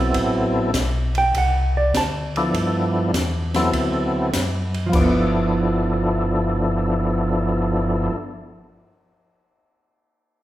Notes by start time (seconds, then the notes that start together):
Already playing: B1 F#3 B3 C4 E4 A4 E5
0.14 A1, kick, ride
0.74 B1, kick, snare, hi-hat pedal, ride
1.15 G5, ride
1.34 C2 F#5, kick, ride
1.77 D5
1.94 D2 A5, kick, snare, hi-hat pedal, ride
2.36 F3 B3 D4 E4 A4, ride
2.54 G2, kick, ride
3.13 E2, kick, snare, hi-hat pedal, ride
3.54 F#3 B3 C4 E4 A4, snare, ride
3.73 D2, kick, ride
4.33 F#2, kick, snare, hi-hat pedal, ride
4.74 ride
4.86 F3
4.92 G1 B3 D4, kick, crash
4.99 B3 E4 A4
5.12 E4
5.35 cymbal swell